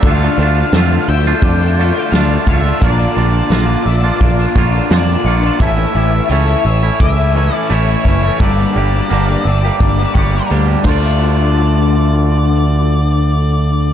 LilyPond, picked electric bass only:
\new Staff \with { instrumentName = "Picked electric bass" } { \clef bass \time 4/4 \key d \minor \tempo 4 = 86 d,8 d,8 f,8 d,8 f,4 d,8 cis,8 | bes,,8 bes,,8 bes,,8 bes,,8 bes,,8 bes,,8 f,8 bes,,8 | a,,8 a,,8 cis,8 a,,8 cis,4 a,,8 fis,,8 | g,,8 g,,8 g,,8 g,,8 g,,8 g,,8 d,8 d,8~ |
d,1 | }